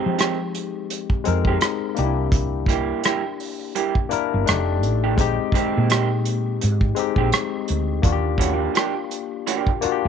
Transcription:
Already playing: D#3 G#3 C4 D#4 G4
0.06 F3
0.18 D#3 G#3 C4 G4, cross-stick, closed hi-hat
0.55 closed hi-hat
0.90 closed hi-hat
1.10 kick
1.24 F2 G#3 C4 D#4 A#4, closed hi-hat
1.45 G#3 C4 G4, kick
1.49 D#3
1.61 cross-stick, closed hi-hat
1.95 C2 A#3 D4 D#4, closed hi-hat
1.99 G4
2.04 E4
2.32 kick, closed hi-hat
2.66 G3 A#3 E4 G4, kick, closed hi-hat
3.04 G3 A#3 E4 G4, cross-stick, closed hi-hat
3.40 open hi-hat
3.75 G3 A#3 E4 G4, closed hi-hat
3.95 kick
4.09 A#3 D4 E4 A#4, muted fretless electric bass stroke, closed hi-hat
4.34 G1
4.45 F1 G#3 D4 D#4, cross-stick, closed hi-hat
4.49 A3 G4
4.83 A1, closed hi-hat
5.04 D#3 A3 D4 G4
5.17 A#1 G#3 C4 D#4, kick, closed hi-hat
5.21 G4
5.52 D#3 G#3 C4 G4, muted fretless electric bass stroke, kick, closed hi-hat
5.77 A#2
5.90 D#3 G#3 C4 G4, cross-stick, closed hi-hat
6.25 closed hi-hat
6.61 G#2, closed hi-hat
6.81 kick
6.95 G#3 C4 D#4, closed hi-hat
6.99 G4
7.16 A#1 D#3 G#3 C4 G4, kick
7.32 cross-stick, closed hi-hat
7.68 D2, closed hi-hat
8.02 D#2 A#3 D4 F4 F#4, kick, closed hi-hat
8.12 G4
8.38 E3 A3 C#4 F#4, kick, closed hi-hat
8.53 F3 A#3 D4 G4
8.74 F3 A#3 D4 G4, cross-stick, closed hi-hat
9.11 closed hi-hat
9.47 F3 A#3 D4 G4, closed hi-hat
9.67 kick
9.81 A#3 D4 F4 F#4, muted fretless electric bass stroke, closed hi-hat
9.92 G4
10.05 D2

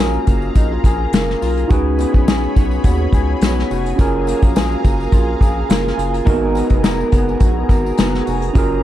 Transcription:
Already playing: A#1 F#3 A#3 C#4 F4 G#4 A#4 F5 G#5 A#5
0.00 G#4
0.14 tambourine
0.27 F#1 A#3, kick, closed hi-hat, tambourine
0.42 tambourine
0.55 A#1 D#4, kick, closed hi-hat, tambourine
0.73 F4
0.84 A#1 G#4, kick, closed hi-hat, tambourine
1.13 F#1 A#3, snare, closed hi-hat, tambourine
1.30 snare
1.42 B1 F4, open hi-hat, tambourine
1.57 closed hi-hat
1.68 C#2 C#3 D#4 F#4 G#4 C#5 B5, kick, closed hi-hat, tambourine
1.73 B4
1.98 B3, closed hi-hat, tambourine
2.14 A#1, kick, tambourine
2.28 G#4, snare, closed hi-hat, tambourine
2.43 tambourine
2.55 B1 B3, kick, closed hi-hat, tambourine
2.71 tambourine
2.84 D#2 F#4, kick, closed hi-hat, tambourine
3.12 C#2 G#4, kick, closed hi-hat, tambourine
3.41 B1 B3, snare, closed hi-hat, tambourine
3.59 snare
3.71 F1 F#4, open hi-hat, tambourine
3.86 closed hi-hat
3.96 F#1 F#3 C#4 F4 G#4 F5 A#5, kick, closed hi-hat, tambourine
4.00 G#4 A#4
4.27 A#3, closed hi-hat, tambourine
4.42 A#1, kick, closed hi-hat, tambourine
4.56 G#4, snare, closed hi-hat, tambourine
4.72 tambourine
4.84 F#1 A#3, kick, closed hi-hat, tambourine
5.00 tambourine
5.12 A#1 F4, kick, closed hi-hat, tambourine
5.41 A#1 G#4, kick, closed hi-hat, tambourine
5.69 F#1 A#3, snare, closed hi-hat, tambourine
5.87 snare
5.97 F#1 F4, closed hi-hat, tambourine
6.14 closed hi-hat
6.25 G#1 G#3 A#3 B3 D#4 F#4 A#4 A#5, kick, closed hi-hat, tambourine
6.30 B3 A#4
6.55 B3, closed hi-hat, tambourine
6.70 F1, kick, closed hi-hat
6.83 A#4, snare, closed hi-hat, tambourine
7.01 tambourine
7.12 F#1 B3, kick, closed hi-hat, tambourine
7.29 tambourine
7.40 A#1 F#4, kick, closed hi-hat, tambourine
7.69 G#1 A#4, kick, closed hi-hat, tambourine
7.86 tambourine
7.97 F#1 B3, snare, closed hi-hat, tambourine
8.14 snare
8.26 F1 F#4, open hi-hat, tambourine
8.42 closed hi-hat
8.53 F#1 F#3 C#4 F4 G#4 F5, kick, closed hi-hat, tambourine
8.58 A#4

